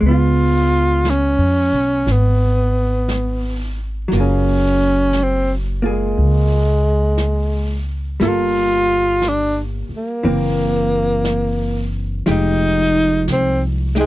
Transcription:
0.01 C#2 G#3, brush sweep
0.06 B3 F4
0.11 F4
1.05 brush sweep, snare, hi-hat pedal
1.10 C#4
1.38 F2
1.72 B1
2.06 G#1, brush sweep, snare
2.12 B3
3.09 brush sweep, snare, hi-hat pedal
4.08 F#1 F#3, brush sweep, snare
4.13 A#3 F4
4.20 C#4 G#4
5.13 brush sweep, snare, hi-hat pedal
5.23 C4
5.82 A#3 F4 G#4
5.88 G#3
6.15 C#2, brush sweep
7.18 brush sweep, snare, hi-hat pedal
8.20 G1 G3 A#3 E4 F4, brush sweep, snare
8.25 F4 A4
9.22 brush sweep, snare, hi-hat pedal
9.28 D4
9.89 muted upright bass stroke
9.97 A#3
10.22 F#1 E3 A#3 C4, brush sweep
11.24 brush sweep, snare, hi-hat pedal
12.26 F1 F3 G#3 D#4 G4, brush sweep, snare
12.31 D#4
13.28 C2, brush sweep, snare, hi-hat pedal
13.32 C4
13.95 G#3 D#4 G4, snare
14.00 G#3

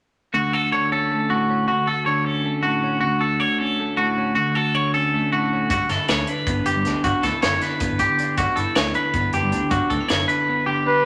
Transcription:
0.34 D2 F#4
0.53 F#4 A4
0.72 D3 C#5
0.92 C#4 A4
1.11 A3
1.30 A2 F#4
1.50 C#4
1.68 D2 F#4
1.87 F#4 A4
2.06 D3 C#5
2.25 C#4 A4
2.45 A3
2.63 A2 F#4
2.84 C#4
3.01 D2 F#4
3.21 F#4 A4
3.40 D3 C#5
3.59 C#4 A4
3.80 A3
3.97 A2 F#4
4.18 C#4
4.35 D2 F#4
4.55 F#4 A4
4.74 D3 C#5
4.94 C#4 A4
5.14 A3
5.32 A2 F#4
5.53 C#4
5.70 G1 G2 F#4, kick, closed hi-hat
5.89 G1 E4 A4, snare, closed hi-hat
6.08 D2 D3 C#5, snare, closed hi-hat
6.27 D4 B4, closed hi-hat
6.47 G1 B3, kick, closed hi-hat
6.66 F#1 D3 G4, closed hi-hat
6.76 G2
6.85 D2 D4, snare, closed hi-hat
7.04 G1 G2 F#4, kick, closed hi-hat
7.23 D2 E4 A4, kick, snare, closed hi-hat
7.42 F#1 D3 C#5, snare, closed hi-hat
7.61 D4 B4, snare, closed hi-hat
7.80 G1 B3, kick, closed hi-hat
7.91 G1
7.99 D3 G4, kick, closed hi-hat
8.19 D4, closed hi-hat
8.38 G1 G2 F#4, kick, closed hi-hat
8.56 G1 E4 A4, closed hi-hat
8.75 D2 D3 C#5, snare, closed hi-hat
8.94 D4 B4, closed hi-hat
9.14 G1 B3, kick, closed hi-hat
9.33 F#1 D3 G4, closed hi-hat
9.43 G2
9.52 D2 D4, closed hi-hat
9.71 G1 G2 F#4, kick, closed hi-hat
9.90 D2 D4 A4, kick, closed hi-hat
10.00 E4
10.09 F#1 D3 C#5, snare, closed hi-hat
10.28 D4 B4, closed hi-hat
10.49 B3
10.66 D3 G4
10.86 D4 B4

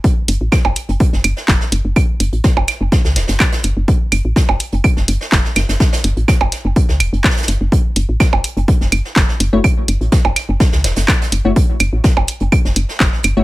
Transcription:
0.04 kick, closed hi-hat
0.28 F#1, closed hi-hat
0.41 A1
0.52 kick, snare, closed hi-hat, claves
0.65 F#1, percussion blips
0.75 closed hi-hat
0.89 F#1, closed hi-hat
1.00 kick, closed hi-hat
1.13 F#1, snare
1.24 F#1, closed hi-hat, claves
1.36 snare
1.48 F#1, kick, snare, clap, closed hi-hat
1.61 snare
1.72 F#1, closed hi-hat
1.85 F#1
1.96 kick, closed hi-hat, claves
2.20 F#1, closed hi-hat
2.33 A1, closed hi-hat
2.44 kick, snare, closed hi-hat
2.57 F#1, percussion blips
2.67 snare, closed hi-hat, claves
2.81 F#1
2.92 kick, snare, closed hi-hat
3.04 C#2, snare
3.16 E1, snare, closed hi-hat
3.28 F#1, snare, closed hi-hat
3.39 kick, snare, clap, closed hi-hat, claves
3.52 snare, closed hi-hat
3.63 F#1, closed hi-hat
3.77 F#1
3.88 kick, closed hi-hat
4.12 F#1, closed hi-hat, claves
4.25 A1
4.36 kick, snare, closed hi-hat
4.49 F#1, percussion blips
4.59 closed hi-hat
4.72 F#1, closed hi-hat
4.84 kick, closed hi-hat, claves
4.97 F#1, snare
5.08 F#1, closed hi-hat
5.21 snare
5.32 F#1, kick, snare, clap, closed hi-hat
5.44 snare
5.55 F#1, snare, closed hi-hat, claves
5.69 F#1, snare, closed hi-hat
5.80 kick, snare, closed hi-hat
5.93 snare, closed hi-hat
6.04 F#1, closed hi-hat
6.17 A1, closed hi-hat
6.28 kick, snare, closed hi-hat, claves
6.41 F#1, percussion blips
6.52 snare, closed hi-hat
6.65 F#1
6.76 kick, closed hi-hat
6.89 C#2, snare
7.00 E1, closed hi-hat, claves
7.13 F#1, closed hi-hat
7.24 kick, snare, clap, closed hi-hat
7.30 snare, closed hi-hat
7.37 snare, closed hi-hat
7.42 snare, closed hi-hat
7.48 F#1, closed hi-hat
7.61 F#1
7.72 kick, closed hi-hat
7.96 F#1, closed hi-hat
8.09 A1
8.20 kick, snare, closed hi-hat, claves
8.33 F#1, percussion blips
8.44 closed hi-hat
8.57 F#1, closed hi-hat
8.68 kick, closed hi-hat
8.81 F#1, snare
8.92 F#1, closed hi-hat, claves
9.05 snare
9.16 F#1, kick, snare, clap, closed hi-hat
9.29 snare
9.40 F#1, closed hi-hat
9.53 F#1 A3 E4 F#4 C#5
9.64 kick, closed hi-hat, claves
9.88 F#1, closed hi-hat
10.01 A1, closed hi-hat
10.12 kick, snare, closed hi-hat
10.25 F#1, percussion blips
10.36 snare, closed hi-hat, claves
10.49 F#1
10.60 kick, snare, closed hi-hat
10.72 C#2, snare
10.84 E1, snare, closed hi-hat
10.96 F#1, snare, closed hi-hat
11.08 kick, snare, clap, closed hi-hat, claves
11.21 snare, closed hi-hat
11.32 F#1, closed hi-hat
11.45 F#1 A3 E4 F#4 C#5
11.56 kick, closed hi-hat
11.79 F#1, closed hi-hat, claves
11.93 A1
12.04 kick, snare, closed hi-hat
12.17 F#1, percussion blips
12.27 closed hi-hat
12.40 F#1, closed hi-hat
12.52 kick, closed hi-hat, claves
12.65 F#1, snare
12.76 F#1, closed hi-hat
12.89 snare
13.00 F#1, kick, snare, clap, closed hi-hat
13.13 snare
13.23 F#1, closed hi-hat, claves
13.37 F#1 A3 E4 F#4 C#5

